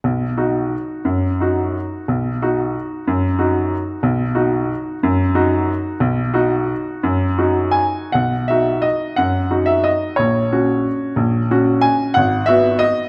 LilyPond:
\new Staff \with { instrumentName = "Grand piano" } { \time 3/4 \key b \major \tempo 4 = 179 << { r2. | r2. | r2. | r2. |
r2. | r2. | r2. | r2 gis''4 |
fis''4 e''4 dis''4 | fis''4. e''8 dis''4 | cis''2.~ | cis''4. r8 gis''4 |
fis''4 e''4 dis''4 | } \\ { b,,4 <dis' fis'>2 | fis,4 <dis' fis'>2 | b,,4 <dis' fis'>2 | fis,4 <dis' fis'>2 |
b,,4 <dis' fis'>2 | fis,4 <dis' fis'>2 | b,,4 <dis' fis'>2 | fis,4 <dis' fis'>2 |
b,,4 <dis' fis'>2 | fis,4 <dis' fis'>2 | ais,,4 <cis' fis'>2 | ais,,4 <cis' fis'>2 |
gis,,4 <b fis'>2 | } >> }